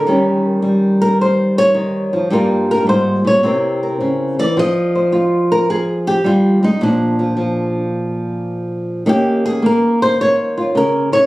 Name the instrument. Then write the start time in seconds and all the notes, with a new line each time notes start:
nylon-string guitar
Already playing: A#4
0.07 D#3 G3 C#4 G4
0.62 G3
1.02 A#4
1.21 C5
1.58 C#5
1.74 D#3
2.13 F3
2.30 G2 G3 A#3 F4 A#4
2.71 A#4
2.87 G#2 C5
3.25 A#2 C#5
3.43 C3 C4 E4 A#4
3.83 A#4
4.01 C#3
4.39 E3 D5
4.57 F3 D#5
4.95 C5
5.12 F4
5.52 A#4
5.70 G#4
6.07 G4
6.24 G3 F4
6.63 G#3 D#4
6.81 A#2 F3 D4
7.19 F3
7.37 F3
9.06 D#3 A#3 C#4 G4
9.46 G#4
9.62 A#3 A#4
10.02 C5
10.21 C#5
10.57 F4
10.75 C#3 A#4
11.12 D#3 C#5